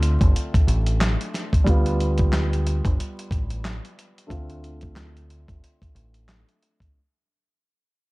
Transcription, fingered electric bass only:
0.00 0.16 D2 loud
0.21 0.34 G1 medium
0.67 1.15 A1 loud
1.67 2.80 D2 loud
2.85 2.97 G1 medium
3.31 3.79 A1 medium
4.30 5.44 D2 loud
5.48 5.61 G1 medium
5.95 6.43 A1 loud

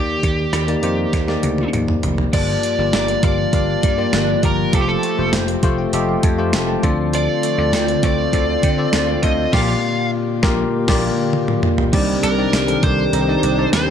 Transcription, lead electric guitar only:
0.00 1.69 G4 medium
2.34 2.93 D5 loud
2.95 3.23 D5 loud
3.24 4.47 D5 loud
4.45 4.75 A#4 medium
4.75 4.81 A4 medium
4.81 4.88 G4 medium
4.88 5.31 A4 medium
7.15 8.03 D5 medium
8.04 9.23 D5 medium
9.23 9.53 D#5 loud
9.53 10.09 F5 loud
12.23 12.83 A#4 medium
12.84 13.70 C5 medium
13.74 13.90 C5 medium

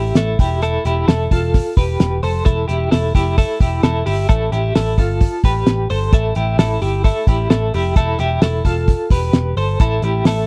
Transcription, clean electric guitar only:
0.00 0.16 E4 soft
0.00 0.16 G4 medium
0.17 0.39 E4 medium
0.17 0.39 A4 medium
0.40 0.62 E4 medium
0.40 0.62 G4 medium
0.63 0.85 E4 medium
0.63 0.85 A4 loud
0.86 1.08 E4 medium
0.86 1.08 G4 medium
1.08 1.31 E4 medium
1.08 1.30 A4 medium
1.32 1.75 F4 medium
1.32 1.74 A4 medium
1.77 2.21 G4 medium
1.77 2.20 B4 medium
2.23 2.44 A4 medium
2.23 2.46 C5 medium
2.45 2.67 E4 medium
2.45 2.67 A4 loud
2.68 2.91 E4 medium
2.68 2.91 G4 medium
2.91 3.15 E4 medium
2.91 3.14 A4 medium
3.15 3.37 E4 medium
3.15 3.37 G4 medium
3.38 3.60 E4 medium
3.38 3.60 A4 loud
3.61 3.83 E4 soft
3.61 3.83 G4 medium
3.83 4.05 E4 medium
3.83 4.06 A4 medium
4.06 4.28 E4 medium
4.06 4.29 G4 medium
4.29 4.52 E4 medium
4.29 4.52 A4 loud
4.52 4.75 E4 medium
4.52 4.75 G4 medium
4.75 4.99 E4 medium
4.75 4.97 A4 medium
4.99 5.42 F4 medium
4.99 5.41 A4 medium
5.45 5.87 G4 medium
5.45 5.87 B4 medium
5.90 6.12 A4 medium
5.90 6.13 C5 medium
6.13 6.36 E4 medium
6.13 6.36 A4 loud
6.36 6.58 E4 medium
6.36 6.58 G4 medium
6.59 6.81 E4 medium
6.59 6.81 A4 medium
6.82 7.04 E4 medium
6.82 7.04 G4 medium
7.04 7.28 E4 medium
7.04 7.27 A4 medium
7.28 7.49 E4 medium
7.28 7.50 G4 medium
7.50 7.74 E4 medium
7.50 7.73 A4 medium
7.74 7.96 E4 medium
7.74 7.96 G4 medium
7.97 8.19 E4 medium
7.97 8.19 A4 loud
8.20 8.42 E4 medium
8.20 8.42 G4 loud
8.42 8.66 E4 medium
8.42 8.64 A4 medium
8.65 9.09 F4 medium
8.65 9.08 A4 medium
9.12 9.55 G4 medium
9.12 9.55 B4 medium
9.57 9.79 A4 medium
9.57 9.80 C5 medium
9.81 10.04 E4 medium
9.81 10.03 A4 loud
10.04 10.26 E4 medium
10.04 10.26 G4 medium
10.27 10.47 E4 medium
10.27 10.47 A4 medium

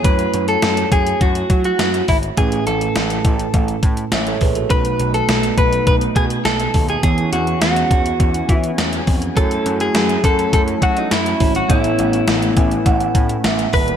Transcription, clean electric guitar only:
0.05 0.48 B4 medium
0.49 0.89 A4 medium
0.92 1.19 G#4 medium
1.21 1.62 F#4 medium
1.65 2.06 F#4 medium
2.09 2.17 E4 medium
2.38 2.65 G#4 medium
2.67 3.79 A4 medium
4.71 5.14 B4 medium
5.14 5.58 A4 medium
5.58 5.85 B4 medium
5.87 5.95 B4 medium
6.17 6.24 G#4 medium
6.45 6.86 A4 medium
6.90 7.02 G#4 medium
7.04 7.32 G#4 medium
7.33 7.61 F#4 medium
7.62 8.57 F#4 medium
8.57 9.03 E4 medium
9.37 9.77 A4 medium
9.81 10.24 G#4 medium
10.25 10.53 A4 loud
10.54 10.62 A4 medium
10.83 10.98 F#4 medium
10.98 11.12 D#4 medium
11.12 11.52 E4 medium
11.56 11.70 F#4 medium
11.70 13.41 E4 medium
13.74 13.97 B4 loud

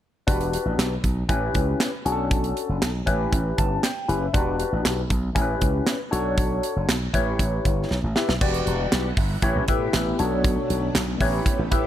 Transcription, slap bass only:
0.28 0.56 E1 loud
0.65 0.75 A1 medium
0.78 0.97 B1 medium
1.04 1.22 B1 medium
1.29 1.48 A1 medium
1.55 1.74 C#2 medium
2.05 2.52 B1 medium
2.69 2.78 F#1 medium
2.82 3.01 B1 medium
3.07 3.26 A1 medium
3.33 3.51 A1 medium
3.58 3.77 G1 medium
4.09 4.27 F#1 medium
4.34 4.62 E1 loud
4.72 4.82 A1 medium
4.85 5.04 B1 medium
5.10 5.29 B1 medium
5.36 5.54 A1 loud
5.62 5.80 C#2 medium
6.12 6.59 B1 medium
6.76 6.85 F#1 medium
6.89 7.07 B1 medium
7.14 7.33 A1 medium
7.39 7.58 A1 medium
7.65 7.84 G1 medium
7.91 8.00 B1 medium
8.03 8.13 A1 medium
8.29 8.38 B1 medium
8.41 8.60 E1 loud
8.67 8.85 E1 loud
8.93 9.11 B1 medium
9.17 9.36 G1 medium
9.42 9.52 A1 loud
9.56 9.65 A1 medium
9.69 9.87 A2 loud
9.94 10.12 A1 medium
10.20 10.57 B1 medium
10.70 10.89 B1 loud
10.95 11.14 B1 medium
11.21 11.39 A1 loud
11.59 11.68 A1 medium
11.72 11.87 A2 medium

